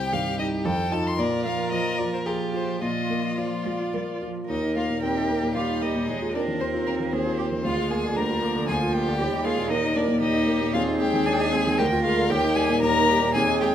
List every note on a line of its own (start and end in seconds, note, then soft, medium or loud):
0.00 0.62 C2 soft
0.00 0.28 C4 soft
0.00 0.66 G4 medium
0.00 0.14 G5 medium
0.13 0.55 G2 soft
0.13 0.52 D#3 soft
0.13 0.52 G4 soft
0.13 0.38 F5 medium
0.39 0.65 D#4 soft
0.39 0.47 D#5 medium
0.65 1.17 F2 medium
0.65 1.05 D#3 soft
0.65 1.05 F4 soft
0.65 1.17 A4 medium
0.65 0.93 G5 medium
0.92 1.15 D#4 soft
0.92 1.16 F4 soft
0.92 1.08 A5 medium
1.07 1.21 C6 medium
1.18 2.78 A#2 soft
1.18 2.21 F3 soft
1.18 2.22 F4 soft
1.18 2.27 A#4 medium
1.18 1.44 D5 medium
1.45 1.88 A#3 soft
1.45 1.71 F5 medium
1.71 2.15 F3 soft
1.71 2.00 D#5 medium
1.98 2.43 F4 soft
1.98 2.12 D5 medium
2.14 2.19 C5 soft
2.26 2.80 F3 soft
2.26 2.81 F4 soft
2.26 2.83 G4 medium
2.26 2.70 G#4 soft
2.26 2.34 A#4 soft
2.53 2.82 F4 soft
2.53 2.81 C5 soft
2.81 4.46 A#2 soft
2.81 3.36 F3 soft
2.81 3.36 F4 soft
2.81 4.22 F4 soft
2.81 3.39 D#5 medium
3.10 3.55 A#3 soft
3.37 3.45 F3 soft
3.37 3.82 F3 soft
3.37 4.27 F4 soft
3.37 4.22 D5 soft
3.65 3.73 G#3 soft
3.65 4.11 F4 soft
3.94 4.02 G3 soft
3.94 4.39 A#4 soft
4.22 4.48 F3 soft
4.22 4.50 F4 soft
4.49 5.02 D#2 soft
4.49 5.05 A#3 soft
4.49 4.74 D#4 soft
4.49 5.51 A#4 soft
4.49 4.75 D#5 soft
4.63 4.85 D#4 soft
4.76 4.98 A#3 soft
4.76 4.84 F4 soft
4.76 5.02 F5 soft
4.90 5.11 A#2 soft
5.03 5.54 D#2 soft
5.03 5.31 C4 soft
5.03 5.57 G4 soft
5.03 5.55 G5 medium
5.17 5.37 D#4 soft
5.30 5.58 A#3 soft
5.30 5.51 A#3 soft
5.43 5.64 A#2 soft
5.55 6.07 D#2 soft
5.55 6.10 G3 soft
5.55 5.82 F4 soft
5.55 6.07 G4 soft
5.55 5.83 F5 soft
5.69 5.90 D#4 soft
5.82 6.03 A#3 soft
5.82 6.34 D#4 soft
5.82 6.34 D#5 soft
5.95 6.08 A#2 soft
6.08 6.59 D#2 soft
6.08 6.34 G#3 soft
6.08 6.33 G#4 soft
6.22 6.42 F4 soft
6.34 6.43 A#3 soft
6.34 6.56 C4 soft
6.34 6.63 D4 soft
6.34 7.14 A#4 soft
6.34 6.43 D5 medium
6.48 6.68 D#3 soft
6.60 7.11 D#2 soft
6.60 7.13 C4 soft
6.60 6.89 C4 soft
6.60 6.68 C5 soft
6.74 6.94 F4 soft
6.87 7.14 A#3 soft
6.87 7.07 C4 soft
6.87 6.95 A#4 soft
7.00 7.20 D#3 soft
7.12 7.63 D#2 soft
7.12 7.66 A#3 soft
7.12 7.64 C4 soft
7.12 7.38 G#4 soft
7.12 7.66 C5 medium
7.25 7.46 F4 soft
7.38 7.59 C4 soft
7.38 7.46 G4 soft
7.52 7.65 D#3 soft
7.64 8.15 D2 soft
7.64 8.18 G#3 soft
7.64 8.15 F4 soft
7.64 7.90 F4 medium
7.64 7.93 F5 medium
7.78 7.99 F4 soft
7.90 8.11 A#3 soft
7.90 8.18 G#4 soft
7.90 8.18 G#5 medium
8.04 8.24 D3 soft
8.16 8.67 D2 soft
8.16 8.44 G3 soft
8.16 8.69 D4 soft
8.16 8.67 A#4 medium
8.16 8.67 A#5 medium
8.30 8.51 F4 soft
8.42 9.18 F3 soft
8.42 8.63 A#3 soft
8.56 8.76 D3 soft
8.68 9.18 D2 soft
8.68 9.19 F4 soft
8.68 8.76 G#4 medium
8.68 8.94 G#5 medium
8.82 9.02 F4 soft
8.93 9.15 A#3 soft
8.93 9.44 G4 soft
8.93 9.46 G5 medium
9.07 9.20 D3 soft
9.19 9.69 D#2 soft
9.19 9.46 G3 soft
9.19 9.46 G4 soft
9.33 9.53 D#4 soft
9.44 9.71 G#3 soft
9.44 9.66 A#3 soft
9.44 9.71 F4 soft
9.44 9.72 G#4 medium
9.44 9.69 F5 medium
9.58 9.78 A#2 soft
9.69 10.19 D#2 soft
9.69 10.73 A#3 soft
9.69 9.95 D#4 medium
9.69 10.21 A#4 medium
9.69 9.97 D#5 medium
9.84 10.04 D#4 soft
9.96 10.16 A#3 soft
9.96 10.04 D4 soft
9.96 10.21 D5 medium
10.08 10.29 A#2 soft
10.20 10.72 D#2 soft
10.20 10.75 D#4 medium
10.20 10.75 G4 medium
10.20 10.73 D#5 medium
10.34 10.55 D#4 soft
10.47 10.69 A#3 soft
10.61 10.74 A#2 soft
10.73 11.25 D#2 soft
10.73 11.27 C4 soft
10.73 11.00 F4 medium
10.73 11.80 G#4 medium
10.73 10.82 F5 medium
10.87 11.08 D#4 soft
11.00 11.21 G#3 soft
11.00 11.27 G4 medium
11.00 11.27 G5 medium
11.14 11.34 D#3 soft
11.26 11.77 D#2 soft
11.26 11.53 D4 medium
11.26 11.77 G#4 medium
11.26 11.34 G#5 medium
11.33 11.42 G5 medium
11.40 11.60 D#4 soft
11.40 11.80 G#5 medium
11.52 11.74 G#3 soft
11.52 11.79 C4 medium
11.67 11.79 D#3 soft
11.77 12.29 D2 medium
11.77 12.29 A#3 soft
11.77 11.86 G4 medium
11.77 12.32 A#4 medium
11.77 12.04 G5 medium
11.92 12.12 F4 soft
12.04 12.25 G#3 soft
12.04 12.31 F4 medium
12.04 12.31 F5 medium
12.17 12.30 D3 soft
12.29 12.81 D#2 medium
12.29 13.36 A#3 medium
12.29 12.57 G4 medium
12.29 12.82 G4 medium
12.29 12.57 G5 medium
12.44 12.64 D#4 soft
12.55 12.77 G3 soft
12.55 12.81 G#4 medium
12.55 12.81 G#5 medium
12.69 12.90 A#2 soft
12.81 13.33 D#2 soft
12.81 13.11 D#4 medium
12.81 13.33 A#4 medium
12.81 13.33 A#5 medium
12.96 13.16 D#4 soft
13.09 13.30 G3 soft
13.09 13.34 G4 medium
13.22 13.35 A#2 soft
13.34 13.75 D#2 medium
13.34 13.75 C4 soft
13.34 13.42 G#4 medium
13.34 13.75 G#4 medium
13.34 13.60 G#5 medium
13.48 13.69 D#4 soft
13.61 13.75 G#3 soft
13.61 13.69 G4 medium
13.61 13.75 G5 medium